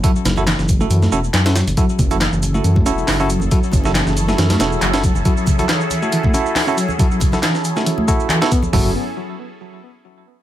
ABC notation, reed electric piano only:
X:1
M:4/4
L:1/16
Q:"Swing 16ths" 1/4=138
K:F#m
V:1 name="Reed electric piano" clef=bass
F,4 E,3 A, E, A, C z2 C F, z | F,4 E,3 A, E, A, C z2 C F, z | F,4 E,3 A, E, A, C z2 C F, z | F,4 E,3 A, E, A, C z2 C F, z |
F,4 E,3 A, E, A, A, z E, B, B, z | F,2 z12 z2 |]